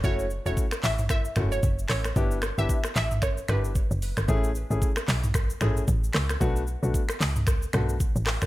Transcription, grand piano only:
X:1
M:4/4
L:1/16
Q:"Swing 16ths" 1/4=113
K:A
V:1 name="Grand piano"
[A,CEF] z2 [A,CEF] z6 [A,CEF] z4 z | [B,DE=G] z2 [B,DEG] z6 [B,DEG] z4 z | [A,CEG] z2 [A,CEG] z6 [A,CEG] z4 z | [A,B,DF] z2 [A,B,DF] z6 [A,B,DF] z4 z |]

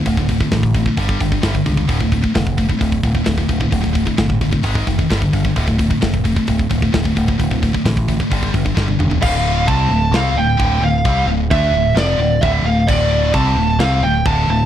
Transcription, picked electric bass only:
X:1
M:4/4
L:1/8
Q:1/4=131
K:Dm
V:1 name="Picked electric bass" clef=bass
D,,,2 A,,,2 G,,, G,,, G,,, ^C,, | D,,,2 F,,,2 D,,, D,,, D,,, D,,, | D,,,2 G,,,2 ^G,,, F,,, =G,,, G,,, | D,,,2 F,,,2 D,,, D,,, D,,, D,,, |
D,,,2 A,,,2 G,,, G,,, G,,, E,,, | D,,,2 C,, D,,, C,, D,,, D,,, D,,, | C,, D,,, D,, D,,, F,,, D,,, D,,, D,,, | D,,,2 C,, D,,, C,, D,,, D,,, D,,, |]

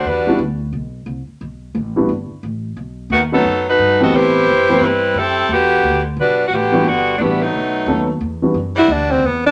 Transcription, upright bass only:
X:1
M:4/4
L:1/8
Q:"Swing" 1/4=176
K:Em
V:1 name="Upright bass" clef=bass
E,,2 D,,2 B,,,2 C,, z | B,,,2 A,,,2 G,,, z A,,,2 | B,,,2 ^D,,2 F,,2 G,,2 | A,,2 F,,2 G,,2 F,,2 |
E,,2 D,,2 B,,,2 A,,,2 | G,,,2 A,,,2 B,,,2 ^D,,2 | E,,2 F,,2 D,,2 E,,2 |]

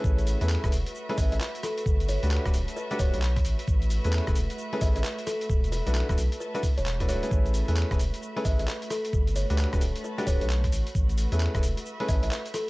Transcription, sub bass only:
X:1
M:4/4
L:1/16
Q:"Swing 16ths" 1/4=132
K:A
V:1 name="Sub bass" clef=bass
A,,,3 E,,2 E,,, E,,, z3 A,,, A,,, z4 | =G,,,3 D,,2 D,,, D,,, z3 D,,, B,,,3 A,,, z | A,,,3 E,,2 E,,, E,,, z3 A,,, A,,, z4 | E,,,3 B,,,2 D,,, B,,, z4 E,,,3 D,,, z |
A,,,3 E,,2 E,,, E,,, z3 A,,, A,,, z4 | =G,,,3 D,,2 D,,, D,,, z3 D,,, B,,,3 A,,, z | A,,,3 E,,2 E,,, E,,, z3 A,,, A,,, z4 |]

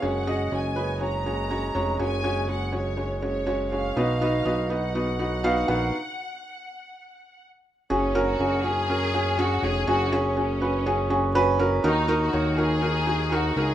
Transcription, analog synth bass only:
X:1
M:4/4
L:1/8
Q:1/4=122
K:Blyd
V:1 name="Analog synth bass" clef=bass
F,,,2 F,,,4- F,,, E,,, | F,,,8 | B,,,2 B,,,4- B,,, A,,, | z8 |
F,,,2 F,,,4- F,,, E,,, | F,,,8 | D,,2 D,,4- D,, C,, |]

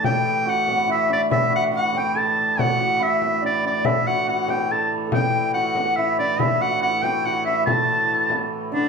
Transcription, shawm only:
X:1
M:3/4
L:1/8
Q:1/4=142
K:Em
V:1 name="Shawm"
g2 f2 e d | e f f g a2 | f2 e2 d d | e f f g a z |
g2 f2 e d | e f f g f e | a4 z D |]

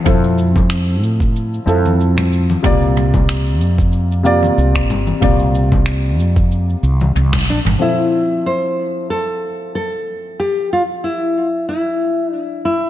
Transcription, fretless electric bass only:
X:1
M:4/4
L:1/16
Q:"Swing 16ths" 1/4=93
K:F
V:1 name="Fretless electric bass" clef=bass
F,,6 A,,3 z F,,4- F,, z | C,,6 F,,4- F,, z C,,2 G,,, z | C,,6 F,,3 z C,,2 C,,2 B,,, G,,, | z16 |
z16 |]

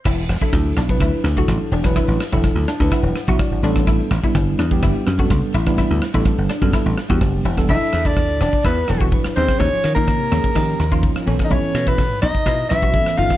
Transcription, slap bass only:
X:1
M:4/4
L:1/16
Q:1/4=126
K:Em
V:1 name="Slap bass" clef=bass
E,,,2 E,,, z D,,2 B,,,2 D,, z D,,2 A,,, z E,,,2- | E,,, A,,, z E,,,2 D,, z D,, z E,,, z B,,, z ^G,,, A,,,2- | A,,,2 A,,, z G,,,2 E,,2 G,,, z F,,2 ^C,, z A,,,2- | A,,, D,, z A,,,2 G,,, z F,, z A,,, z E,, F,,,2 E,,,2 |
E,,, z E,,3 D,, E,,, z E,,2 E,,,3 z ^D,, z | ^D,, z ^D,3 C, D,, z D,2 D,,3 z B,,, z | B,,, z B,,3 ^G,, B,,, z B,,2 B,,,3 z ^G,,, z |]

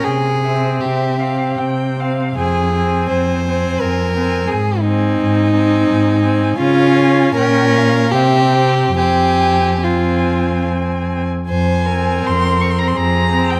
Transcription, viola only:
X:1
M:3/4
L:1/8
Q:1/4=79
K:Fm
V:1 name="Viola"
z C2 C2 C | C C2 C2 C | z C2 C2 C | D2 D2 C2 |
C2 C3 z | z C2 C2 C |]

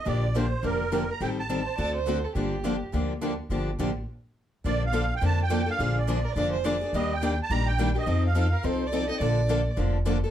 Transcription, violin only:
X:1
M:4/4
L:1/16
Q:"Swing" 1/4=210
K:Bb
V:1 name="Violin"
z16 | z6 c2 d2 c4 A2 | G8 z8 | z16 |
z16 | z6 B2 d2 c2 d3 z | z16 | z6 B2 c3 d3 e2 |
d8 z8 |]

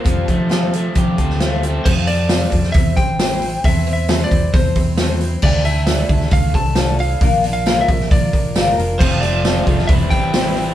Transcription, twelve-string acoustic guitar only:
X:1
M:4/4
L:1/8
Q:1/4=134
K:F
V:1 name="Twelve-string acoustic guitar"
[F,G,CFA] [CFA] [F,G,CFA] [CFA] [G,CFA] [CFA] [F,G,CFA] [CFA] | [F,A,CFA] [CFA] [F,A,CFA] [CFA] [G,CEc] [CEc] [E,G,CEc] [CEc] | [E,A,CEc] [CEc] [E,A,CEc] [CEc] [A,CEc] [CEc] [E,A,CEc] [CEc] | [D,F,A,DEA] [A,DEA] [D,F,A,DEA] [A,DEA] [A,DEA] [A,DEA] [D,F,A,DEA] [A,DEA] |
[B,,F,B,DFB] [B,DFB] [B,,F,B,DFB] [B,DFB] [B,DFB] [B,DFB] [B,,F,B,DFB] [B,DFB] | [F,A,CFA] [CFA] [F,A,CFA] [CFA] [G,CEc] [CEc] [E,G,CEc] [CEc] |]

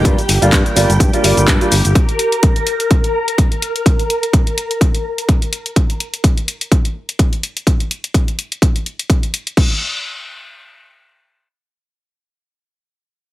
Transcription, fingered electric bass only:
X:1
M:4/4
L:1/16
Q:"Swing 16ths" 1/4=126
K:Gphr
V:1 name="Fingered electric bass" clef=bass
G,, z G,,, G,,, G,, z G,,, G,,, G,, z G,,, G,,, G,, z G,,, G,,, | z16 | z16 | z16 |
z16 | z16 | z16 |]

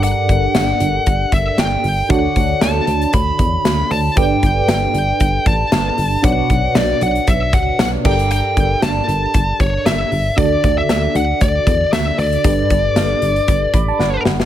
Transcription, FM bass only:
X:1
M:4/4
L:1/8
Q:"Swing 16ths" 1/4=116
K:Glyd
V:1 name="FM bass" clef=bass
G,,, G,,, G,,, G,,, G,,, G,,, G,,, G,,, | D,, D,, D,, D,, D,, E,, D,, D,, | G,,, G,,, G,,, G,,, G,,, A,,, G,,, G,,, | B,,, B,,, B,,, B,,, B,,, C,, B,,, G,,,- |
G,,, G,,, G,,, G,,, G,,, G,,, G,,, G,,, | D,, D,, D,, D,, D,, E,, D,, D,, | G,,, G,,, G,,, G,,, G,,, A,,, G,,, G,,, |]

